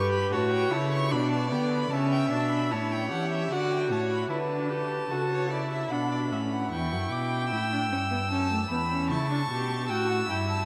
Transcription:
Already playing: G2 G4 B4 C#6
0.12 B5
0.32 A2 F#4 C#5 A5
0.52 G5
0.71 C#3 E4 A5
0.92 C#6
1.10 B2 D4 D5 B5
1.32 A5
1.51 D3 B3 G5
1.72 B5
1.91 C#3 C#4 E5 A5
2.12 G5
2.30 B2 D4 A5
2.51 B5
2.70 A2 E4 C#5 A5
2.92 G5
3.10 E3 G4 F#5
3.32 E5
3.50 D3 F#4 D5 F#5
3.71 G5
3.91 A2 C#5 A5
4.11 B5
4.30 D3 E4 B4 A5
4.50 D4
4.70 G4
5.10 C#3 F#4 A4
5.31 C#5
5.51 E4 D5
5.71 E5
5.90 B2 D4 F#5 B5
6.11 D5
6.31 A2 C#4 E5
6.52 F#5
6.72 E2 E4 G5 C#6
6.92 F#2
7.12 B2 D6
7.51 A2 E4 E6
7.72 D4
7.91 G2 C#4
8.11 B3
8.31 F#2 C#4 A5
8.51 A3
8.70 E2 B3 B5
8.92 C#4
9.10 C#3 E4 A5 C#6
9.31 D4
9.51 B2 G4
9.89 A2 F#4 G5 E6
10.09 F#5
10.28 G2 E4 G5
10.49 A5

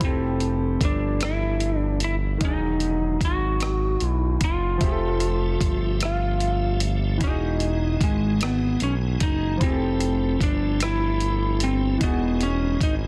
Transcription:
Already playing: F3
0.00 F1 E4 G4, kick, closed hi-hat
0.05 C4 A4
0.40 closed hi-hat
0.81 G1, kick, closed hi-hat
0.85 D4
1.21 cross-stick, closed hi-hat
1.25 E4
1.60 closed hi-hat
1.79 D4
2.00 closed hi-hat
2.04 E4
2.38 E1 D#3 D#4, kick, closed hi-hat
2.44 F#3 D#4 G#4
2.80 closed hi-hat
3.21 G#1, kick, closed hi-hat
3.25 F#4
3.60 cross-stick, closed hi-hat
4.00 B1, closed hi-hat
4.08 E4
4.41 F#1 F4, kick, closed hi-hat
4.78 F1 F3 A3 G4 E5, kick, closed hi-hat
4.83 G4 G#4
4.92 A4
5.20 closed hi-hat
5.61 G1, kick, closed hi-hat
6.00 cross-stick, closed hi-hat
6.05 F4
6.40 closed hi-hat
6.80 closed hi-hat
7.18 E1 E3 G#3 D#4 F#4, kick, closed hi-hat
7.23 D#4 F#4 G#4
7.60 closed hi-hat
8.01 G#1 G#3, kick, closed hi-hat
8.41 B3, cross-stick, closed hi-hat
8.80 B1 C#4, closed hi-hat
9.20 F#1 D#4, kick, closed hi-hat
9.57 F3 A3 E4 G4, kick, closed hi-hat
9.61 F1 C4 G4
9.66 G#4
9.72 A4
10.00 closed hi-hat
10.41 G1 D4, kick, closed hi-hat
10.80 E4, cross-stick, closed hi-hat
11.20 closed hi-hat
11.60 C4, closed hi-hat
11.98 E1 E3 G#3 D#4 F#4, kick, closed hi-hat
12.03 B3 F#4 G#4
12.41 C#4, closed hi-hat
12.81 G#1 D#4, kick, closed hi-hat

